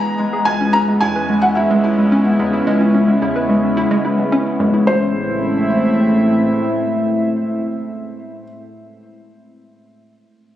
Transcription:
Already playing: E3 G#3 B3 A#5
0.19 G#3
0.33 G#4
0.45 C#2 C#3 G#3 C#4 E4 G#5
0.61 C#4
0.73 C#4 A#5
0.88 G#3
1.01 E2 E4 G#5
1.16 B4
1.30 G#3
1.42 F#5
1.55 E4 E5
1.71 C#2 G#3
1.85 E4
1.98 G#3
2.12 C#4
2.40 E2 G#3
2.53 E4
2.67 C#2 G#3
2.81 C#4
2.94 C#4
3.08 G#3
3.22 E2 E4
3.36 B4
3.50 G#3
3.77 E4
3.91 G#3
4.05 E4
4.19 G#3
4.32 C#4
4.60 F#2 G#3
4.74 E4
4.87 A1 A2 A3 C4 E4 C5 E5

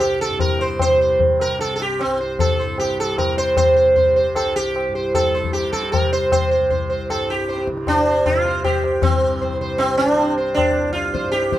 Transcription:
Already playing: C2 G2 C3
0.00 G4, tabla na
0.21 A4
0.30 G2
0.39 A#4, tabla na, tabla ge
0.59 C5, tabla te
0.79 C5, tabla na, tabla ge
0.88 C3
1.01 C5
1.20 tabla tin, tabla ge
1.40 A#4, tabla na
1.46 C3
1.59 A4, tabla te
1.76 A4
1.80 G4, tabla te
2.00 C4, tabla na
2.05 C2
2.21 C5
2.39 A4, tabla na, tabla ge
2.59 G2 C5
2.78 G4, tabla na
3.00 A4
3.18 C3 A#4, tabla na, tabla ge
3.37 C5, tabla te
3.57 C5, tabla na, tabla ge
3.75 C3 C5
3.96 C5, tabla tin, tabla ge
4.16 C5
4.32 C2, tabla na
4.36 A4
4.56 G4
4.76 tabla na
4.89 G2
4.95 C5
5.14 A4, tabla na, tabla ge
5.34 C5, tabla te
5.44 C3, tabla ge
5.53 G4, tabla te
5.63 tabla te
5.73 A4, tabla ke
5.83 tabla te
5.92 A#4, tabla na, tabla ge
6.03 C3
6.12 C5, tabla te
6.32 C5, tabla na, tabla ge
6.51 C5
6.60 C2
6.70 C5, tabla tin, tabla ge
6.90 C5
7.10 A4, tabla na
7.15 G2
7.30 G4
7.49 C5, tabla te
7.58 tabla te
7.67 tabla ke
7.72 C3
7.77 tabla te
7.87 D4 C5, tabla na, tabla ge
8.07 C5
8.26 C3 F4, tabla na, tabla ge
8.46 C5, tabla te
8.64 G4 C5, tabla na, tabla ge
8.83 C2, tabla te
9.02 G2 C4, tabla na, tabla ge
9.41 C5, tabla tin, tabla ge
9.59 C3 C5
9.78 C4, tabla na
9.97 D4
10.14 C3
10.18 C5, tabla na
10.38 C5
10.54 D4, tabla na, tabla ge
10.70 C2
10.93 F4, tabla te
11.05 tabla te
11.14 C5, tabla ke
11.24 G2, tabla te
11.32 G4, tabla te
11.43 tabla te
11.52 C5, tabla ke

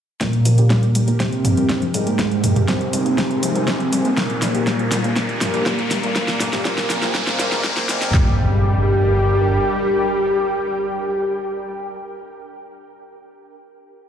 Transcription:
0.21 A#2 G3 A#3 D4 G4 A#4, kick, snare, closed hi-hat, riser
0.27 G4
0.33 closed hi-hat
0.39 A#4
0.45 G1 F3, open hi-hat
0.58 G1 G4, closed hi-hat
0.70 G3, kick, snare, closed hi-hat
0.83 G4, closed hi-hat
0.89 G5
0.95 F1 G3, open hi-hat
1.08 F1 A#3, closed hi-hat
1.20 C3 G3 C4, kick, snare, closed hi-hat
1.33 closed hi-hat
1.45 G1 F3, mid tom, open hi-hat
1.57 G1 G3, closed hi-hat
1.69 D4, kick, snare, closed hi-hat
1.82 F3, closed hi-hat
1.94 G1 G#2 G3 G#3, open hi-hat
2.07 G1 A#3, closed hi-hat
2.19 G3 G#3 D#4 A#4 C5, kick, snare, closed hi-hat
2.32 closed hi-hat
2.43 G1 F3 G#4, mid tom, open hi-hat
2.49 G#5
2.56 G1 G4, closed hi-hat, mid tom
2.68 C3 G3 C4, kick, snare, closed hi-hat
2.73 C5
2.81 G4, closed hi-hat
2.93 G1 G3, open hi-hat
3.06 G1 A#3, closed hi-hat
3.18 G3, kick, snare, closed hi-hat
3.31 closed hi-hat
3.43 F1 F3, open hi-hat
3.55 F1 G3, closed hi-hat
3.68 D#4, kick, snare, closed hi-hat
3.80 F3, closed hi-hat
3.93 G1 G3, open hi-hat
4.05 G1 A#3, closed hi-hat
4.17 A#2 G3 A#3 D4 G4, kick, snare, closed hi-hat
4.30 closed hi-hat
4.42 G1 F3 G4, snare, open hi-hat
4.55 G1 G4, closed hi-hat
4.67 G3, kick, snare, closed hi-hat
4.78 G4 A#4, closed hi-hat
4.92 F1 G3, snare, open hi-hat
5.04 F1 A#3, closed hi-hat
5.16 A#2 G3 A#3, kick, snare, closed hi-hat
5.29 closed hi-hat
5.41 G1 F3, snare, mid tom, open hi-hat
5.54 G1 G4, closed hi-hat
5.66 G3, kick, snare, closed hi-hat
5.79 G4, closed hi-hat
5.91 G1 G3, snare, open hi-hat
6.03 G1 A#3, closed hi-hat
6.16 A#2 G3 A#3 C4 F4 C5 G5 G#5, kick, snare, closed hi-hat
6.24 G#4
6.28 snare, closed hi-hat
6.40 G1 F3, snare, mid tom, open hi-hat
6.53 G1 G4 D#5, snare, closed hi-hat, mid tom
6.65 A#2 G3 A#3, kick, snare, closed hi-hat
6.78 snare, closed hi-hat
6.90 G1 F3, snare, open hi-hat
7.02 G1 G4 F5, snare, closed hi-hat
7.15 A#2 G3 A#3, kick, snare, closed hi-hat
7.27 snare, closed hi-hat
7.40 F1 A#2 G3 A#3, snare, open hi-hat
7.52 G2, snare, closed hi-hat
7.64 A#2 G3 A#3, kick, snare, closed hi-hat
7.77 snare, closed hi-hat
7.89 D2 A#2 G3 A#3, snare, open hi-hat
8.02 snare, open hi-hat
8.14 G1 G3 D4 G4 A#4, kick, snare, clap, impact
8.21 G4
8.29 A#4
8.36 G5

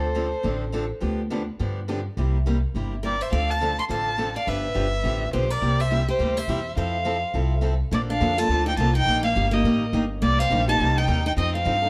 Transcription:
Already playing: D2 A4 C5
0.15 D3 F3 C4 D4 A4
0.43 A1 D3 F3 C4 D4 A4
0.72 D3 F3 C4 D4 A4
1.00 D2 D3 F3 B3 D4 G4
1.30 D3 F3 B3 D4 G4
1.59 G2 D3 F3 B3 D4 G4
1.88 D3 F3 B3 D4 G4
2.17 C2 C3 G3 A#3 E4 G4
2.46 C3 G3 A#3 E4 G4
2.74 G1 C3 G3 A#3 E4 G4
3.03 C3 G3 A#3 E4 G4 A#4 D5
3.21 C5 E5
3.31 D2 D3 F3 C4 D4 A4 D5 F5
3.50 F5 A5
3.61 D3 F3 C4 D4 A4
3.79 A5 C6
3.89 A1 D3 F3 C4 D4 A4 F5 A5
4.18 D3 F3 C4 D4 A4
4.36 D5 F5
4.46 G1 D3 F3 B3 D4 G4 B4 E5
4.74 G1 D3 F3 B3 D4 G4
5.03 A1 D3 F3 B3 D4 G4
5.33 B1 D3 F3 B3 D4 G4 C5
5.50 A#4 D5
5.61 C2 C3 G3 A#3 E4 G4
5.80 C5 E5
5.90 C3 G3 A#3 E4 G4
6.08 G4 C5
6.19 D2 C3 G3 A#3 E4 G4
6.37 C5 E5
6.48 E2 C3 G3 A#3 E4 G4
6.77 F2 F3 C4 E4 A4 C5 F5
7.05 F3 C4 E4 A4
7.34 C2 F3 C4 E4 A4
7.61 F3 C4 E4 A4
7.91 A#1 D3 F3 A#3 D4 A4 D5
8.10 D4 F5
8.20 F2 D3 F3 A#3 D4 A4
8.38 A#3 D4 F4 A4 A5
8.49 D2 D3 F3 A#3 D4 A4
8.66 D#4 G5
8.77 C2 D3 F3 A#3 D4 F4 A4 A5
8.95 D#4 G5
9.06 A#1 D#3 G3 A#3 D#4 G4
9.23 A#3 F5
9.35 G1 D#3 G3 A#3 D#4 G4
9.51 A#3 D#4 G4 D#5
9.64 A1 D#3 G3 A#3 D#4 G4
9.93 G1 D#3 G3 A#3 D#4 G4
10.22 C2 C3 G3 A#3 D#4 G4 D5
10.39 C4 F5
10.50 A#1 C3 G3 A#3 D#4 G4
10.68 A#3 D#4 G4 A5
10.79 C2 C3 G3 A#3 D#4 G4
10.98 D#4 G5
11.07 D#2 C3 G3 A#3 D#4 G4
11.26 D#4 G5
11.36 F2 F3 C4 D#4 A4 D#5
11.55 C4 F5
11.65 G2 F3 C4 D#4 A4
11.82 C4 D#4 A4

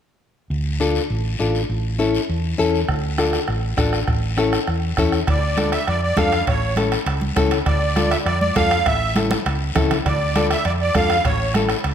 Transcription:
0.50 D2, long guiro
0.80 D4 F4 A4, short guiro
0.95 short guiro
1.10 A1, long guiro
1.39 A1 D4 F4 A4, short guiro
1.55 short guiro
1.69 A1, long guiro
1.99 C#4 E4 A4, short guiro
2.15 short guiro
2.29 E2, long guiro
2.58 E2 C#4 E4 A4, short guiro
2.75 short guiro
2.88 D2, bombo low, bombo rim, long guiro
3.18 D4 F4 A4, bombo rim, short guiro
3.33 bombo rim, short guiro
3.48 A1, bombo rim, long guiro
3.77 A1 D4 F4 A4, bombo low, bombo rim, short guiro
3.93 bombo rim, short guiro
4.08 A1, bombo low, bombo rim, long guiro
4.37 C#4 E4 A4, bombo rim, short guiro
4.53 bombo rim, short guiro
4.67 E2, bombo rim, long guiro
4.97 E2 C#4 E4 A4, bombo low, bombo rim, short guiro
5.12 bombo rim, short guiro
5.27 D2 D5, bombo low, bombo rim, high timbale, long guiro
5.57 D4 F4 A4, bombo rim, high conga, high timbale, short guiro
5.72 E5, bombo rim, high timbale, short guiro
5.87 F2 D5, bombo rim, high timbale, long guiro
6.03 D5
6.17 F2 D4 F4 A4 F5, bombo low, bombo rim, high conga, high timbale, low timbale, short guiro
6.32 bombo rim, high timbale, short guiro
6.47 A1 C#5, bombo low, bombo rim, high timbale, long guiro
6.76 C#4 E4 A4, bombo rim, high conga, high timbale, short guiro
6.92 bombo rim, high timbale, short guiro
7.06 C#2, bombo rim, high timbale, long guiro
7.21 high conga
7.36 C#2 C#4 E4 A4, bombo low, bombo rim, high conga, high timbale, short guiro
7.51 bombo rim, high timbale, short guiro
7.66 D2 D5, bombo low, bombo rim, high timbale, long guiro
7.96 D4 F4 A4, bombo rim, high conga, high timbale, short guiro
8.11 E5, bombo rim, high timbale, short guiro
8.25 F2 D5, bombo rim, high timbale, long guiro
8.41 D5, high conga
8.56 F2 D4 F4 A4 F5, bombo low, bombo rim, high conga, high timbale, low timbale, short guiro
8.71 bombo rim, high timbale, short guiro
8.86 A1 E5, bombo low, bombo rim, high timbale, long guiro
9.16 C#4 E4 A4, bombo rim, high conga, high timbale, short guiro
9.31 bombo rim, high conga, high timbale, short guiro
9.46 C#2, bombo rim, high timbale, long guiro
9.75 C#2 C#4 E4 A4, bombo low, bombo rim, low conga, high timbale, low timbale, short guiro
9.91 bombo rim, low conga, high timbale, short guiro
10.06 D2 D5, bombo low, bombo rim, high timbale, long guiro
10.36 D4 F4 A4, bombo rim, high conga, high timbale, short guiro
10.51 E5, bombo rim, high timbale, short guiro
10.65 F2 D5, bombo rim, high timbale, long guiro
10.81 D5
10.95 F2 D4 F4 A4 F5, bombo low, bombo rim, high conga, high timbale, low timbale, short guiro
11.10 bombo rim, high timbale, short guiro
11.25 A1 C#5, bombo low, bombo rim, high timbale, long guiro
11.54 C#4 E4 A4, bombo rim, high conga, high timbale, short guiro
11.69 bombo rim, high timbale, short guiro
11.84 C#2, bombo rim, high timbale, long guiro

